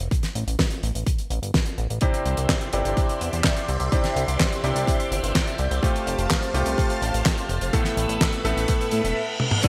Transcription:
0.11 kick loud
0.11 closed hi-hat medium
0.23 snare soft
0.23 closed hi-hat medium
0.35 0.44 A1 medium
0.35 closed hi-hat medium
0.47 0.56 A1 medium
0.47 closed hi-hat medium
0.59 kick loud
0.59 snare loud
0.59 closed hi-hat medium
0.70 closed hi-hat medium
0.83 0.92 A1 medium
0.83 closed hi-hat medium
0.95 1.04 A1 medium
0.95 closed hi-hat medium
1.07 kick loud
1.07 closed hi-hat medium
1.18 closed hi-hat medium
1.30 1.40 A1 medium
1.30 closed hi-hat medium
1.42 1.52 G1 medium
1.42 closed hi-hat medium
1.54 kick loud
1.54 snare loud
1.54 closed hi-hat medium
1.66 closed hi-hat medium
1.78 1.87 A1 medium
1.78 closed hi-hat soft
1.90 1.99 A1 medium
1.90 closed hi-hat soft
2.01 2.70 C3 medium
2.01 2.70 C4 medium
2.01 2.70 D4 medium
2.01 2.70 E4 medium
2.01 7.69 G4 medium
2.01 2.70 G4 medium
2.01 5.79 D5 medium
2.01 5.79 E5 medium
2.01 5.79 C6 medium
2.01 kick loud
2.01 closed hi-hat medium
2.14 closed hi-hat medium
2.26 2.35 C2 medium
2.26 closed hi-hat medium
2.37 2.47 C2 medium
2.37 closed hi-hat medium
2.49 kick loud
2.49 snare loud
2.49 clap medium
2.49 closed hi-hat medium
2.61 closed hi-hat medium
2.73 2.83 G1 medium
2.73 3.89 C3 medium
2.73 3.89 C4 medium
2.73 3.89 D4 medium
2.73 3.89 E4 medium
2.73 3.89 G4 loud
2.73 closed hi-hat medium
2.85 2.95 G1 medium
2.85 closed hi-hat medium
2.97 kick loud
2.97 closed hi-hat medium
3.09 closed hi-hat medium
3.21 3.30 E2 medium
3.21 closed hi-hat medium
3.33 3.42 E2 medium
3.33 closed hi-hat medium
3.44 kick loud
3.44 snare loud
3.44 clap medium
3.44 closed hi-hat medium
3.56 closed hi-hat medium
3.68 3.78 C2 medium
3.68 closed hi-hat medium
3.80 3.90 C2 medium
3.80 closed hi-hat soft
3.92 4.61 C3 medium
3.92 4.61 C4 medium
3.92 4.61 D4 medium
3.92 4.61 E4 medium
3.92 4.61 G4 medium
3.92 kick loud
3.92 closed hi-hat medium
4.04 snare soft
4.04 closed hi-hat medium
4.16 4.25 C2 medium
4.16 closed hi-hat medium
4.28 4.37 C2 medium
4.28 closed hi-hat medium
4.40 kick loud
4.40 snare loud
4.40 clap medium
4.40 closed hi-hat medium
4.52 closed hi-hat medium
4.64 4.73 C2 medium
4.64 5.80 C3 medium
4.64 5.80 C4 medium
4.64 5.80 D4 medium
4.64 5.80 E4 medium
4.64 5.80 G4 loud
4.64 closed hi-hat medium
4.75 4.85 C2 medium
4.75 closed hi-hat medium
4.87 kick loud
4.87 closed hi-hat medium
5.00 closed hi-hat medium
5.11 5.21 G1 medium
5.11 closed hi-hat medium
5.23 5.33 G1 medium
5.23 closed hi-hat medium
5.35 kick loud
5.35 snare loud
5.35 clap medium
5.35 closed hi-hat medium
5.47 closed hi-hat medium
5.58 5.68 C2 medium
5.58 closed hi-hat soft
5.71 5.80 C2 medium
5.71 closed hi-hat medium
5.83 6.51 A3 medium
5.83 6.51 C4 medium
5.83 6.51 F4 medium
5.83 6.51 G4 medium
5.83 7.71 C5 medium
5.83 7.71 F5 medium
5.83 7.71 A5 medium
5.83 kick loud
5.83 closed hi-hat loud
5.96 closed hi-hat soft
6.06 6.16 F1 medium
6.06 closed hi-hat medium
6.18 6.28 F1 medium
6.18 closed hi-hat medium
6.30 kick loud
6.30 snare loud
6.30 clap loud
6.30 closed hi-hat medium
6.43 closed hi-hat medium
6.54 6.63 C2 medium
6.54 7.70 A3 medium
6.54 7.70 C4 medium
6.54 7.70 F4 medium
6.54 7.70 G4 loud
6.54 closed hi-hat medium
6.66 6.75 C2 medium
6.66 closed hi-hat medium
6.78 kick loud
6.78 closed hi-hat medium
6.90 closed hi-hat medium
7.02 7.11 A1 medium
7.02 closed hi-hat medium
7.14 7.23 A1 medium
7.14 closed hi-hat medium
7.26 kick loud
7.26 snare loud
7.26 clap medium
7.26 closed hi-hat medium
7.38 closed hi-hat medium
7.49 7.59 F1 medium
7.49 closed hi-hat medium
7.61 7.71 F1 medium
7.61 closed hi-hat medium
7.73 8.42 A2 medium
7.73 8.42 A3 medium
7.73 8.42 B3 medium
7.73 8.42 E4 medium
7.73 8.42 A4 medium
7.73 9.62 A4 medium
7.73 9.62 B4 medium
7.73 9.62 E5 medium
7.73 9.62 B5 medium
7.73 kick loud
7.73 closed hi-hat loud
7.84 snare soft
7.84 closed hi-hat medium
7.97 8.06 A1 medium
7.97 closed hi-hat medium
8.09 8.18 A1 medium
8.09 closed hi-hat medium
8.21 kick loud
8.21 snare loud
8.21 clap loud
8.21 closed hi-hat medium
8.32 closed hi-hat medium
8.45 8.54 A1 medium
8.45 9.16 A2 medium
8.45 9.16 A3 medium
8.45 9.16 B3 medium
8.45 9.16 E4 medium
8.45 9.16 A4 loud
8.45 closed hi-hat medium
8.57 8.66 A1 medium
8.57 closed hi-hat medium
8.68 kick loud
8.68 closed hi-hat loud
8.68 reverse cymbal medium
8.81 closed hi-hat medium
8.91 9.02 A2 medium
8.91 closed hi-hat medium
9.04 9.14 E1 medium
9.04 closed hi-hat medium
9.40 high tom medium
9.51 mid tom medium
9.63 9.68 D3 medium
9.63 9.68 D4 medium
9.63 9.68 E4 medium
9.63 9.68 F#4 medium
9.63 9.68 A4 medium
9.63 9.68 E5 medium
9.63 9.68 F#5 medium
9.63 9.68 D6 medium
9.63 kick loud
9.63 closed hi-hat loud
9.63 crash loud

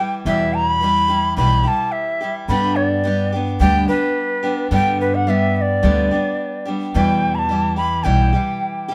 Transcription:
0.00 0.25 E3 soft
0.00 0.26 G3 soft
0.00 0.26 E4 soft
0.00 0.25 G4 soft
0.00 0.12 G5 medium
0.25 1.33 E2 medium
0.25 0.81 E2 medium
0.25 0.82 B2 medium
0.25 0.80 E3 medium
0.25 0.82 G3 medium
0.25 0.82 E4 medium
0.25 0.84 G4 medium
0.25 0.56 E5 medium
0.54 0.67 A#5 medium
0.67 1.37 B5 medium
0.81 1.09 E3 soft
0.81 1.09 G3 medium
0.81 1.09 E4 medium
0.81 1.07 G4 soft
1.08 1.37 E3 soft
1.08 1.37 G3 soft
1.08 1.37 E4 soft
1.08 1.37 G4 soft
1.36 1.64 B1 medium
1.36 1.65 E2 medium
1.36 1.65 B2 medium
1.36 1.65 E3 medium
1.36 1.65 G3 medium
1.36 1.64 E4 medium
1.36 1.62 G4 medium
1.36 1.65 B5 medium
1.63 2.22 E3 soft
1.63 2.23 G3 soft
1.63 2.21 E4 soft
1.63 2.20 G4 soft
1.63 1.69 B5 medium
1.68 1.93 A5 medium
1.92 2.34 E5 medium
2.21 2.50 E3 soft
2.21 2.49 G3 soft
2.21 2.49 E4 soft
2.21 2.49 G4 soft
2.48 3.56 G2 medium
2.48 3.04 G2 medium
2.48 3.05 D3 medium
2.48 3.03 G3 medium
2.48 3.05 B3 medium
2.48 3.05 D4 medium
2.48 3.07 G4 medium
2.48 2.77 B5 medium
2.76 3.33 D5 medium
3.04 3.32 G3 medium
3.04 3.33 B3 medium
3.04 3.33 D4 medium
3.04 3.31 G4 medium
3.32 3.60 G3 soft
3.32 3.61 B3 soft
3.32 3.61 D4 soft
3.32 3.60 G4 soft
3.60 3.86 D2 medium
3.60 3.88 G2 medium
3.60 3.88 D3 medium
3.60 3.88 G3 medium
3.60 3.89 B3 medium
3.60 3.89 D4 medium
3.60 3.87 G4 medium
3.60 3.86 G5 medium
3.88 4.45 B3 soft
3.88 4.42 D4 soft
3.88 4.42 G4 soft
3.88 4.68 B4 medium
3.92 4.46 G3 soft
4.43 4.71 G3 soft
4.43 4.71 B3 soft
4.43 4.71 D4 soft
4.43 4.71 G4 soft
4.71 5.27 G2 medium
4.71 5.79 G2 medium
4.71 5.27 D3 medium
4.71 5.26 G3 medium
4.71 5.28 B3 medium
4.71 5.28 D4 medium
4.71 5.30 G4 medium
4.71 4.98 G5 medium
5.01 5.17 B4 medium
5.15 5.30 F#5 medium
5.27 5.83 G3 soft
5.27 5.83 B3 medium
5.27 5.84 D4 soft
5.27 5.84 G4 soft
5.27 5.57 E5 medium
5.57 5.62 E5 medium
5.61 6.67 D5 medium
5.83 6.10 D2 medium
5.83 6.11 G2 medium
5.83 6.11 D3 medium
5.83 6.11 G3 medium
5.83 6.11 B3 medium
5.83 6.11 D4 medium
5.83 6.10 G4 medium
6.11 6.68 G3 soft
6.11 6.68 B3 soft
6.11 6.65 D4 soft
6.11 6.65 G4 soft
6.65 6.94 G3 soft
6.65 6.95 B3 soft
6.65 6.94 D4 soft
6.65 6.94 G4 soft
6.94 7.50 E2 medium
6.94 8.02 E2 medium
6.94 7.50 B2 medium
6.94 7.48 E3 medium
6.94 7.49 G3 medium
6.94 7.50 E4 medium
6.94 7.51 G4 medium
6.94 7.36 G5 medium
7.35 7.76 A5 medium
7.35 7.40 B5 medium
7.49 7.77 E3 soft
7.49 7.77 G3 soft
7.49 7.76 E4 soft
7.49 7.75 G4 medium
7.76 8.03 E3 soft
7.76 8.04 G3 soft
7.76 8.04 E4 soft
7.76 8.05 G4 soft
7.76 8.05 B5 medium
8.04 8.32 B1 medium
8.04 8.33 E2 medium
8.04 8.33 B2 medium
8.04 8.33 E3 medium
8.04 8.33 G3 medium
8.04 8.33 E4 medium
8.04 8.31 G4 medium
8.04 8.88 G5 medium
8.33 8.91 E3 soft
8.33 8.90 G3 soft
8.33 8.89 E4 soft
8.33 8.87 G4 soft
8.88 8.95 G3 soft
8.88 8.95 E4 soft
8.88 8.95 G4 medium

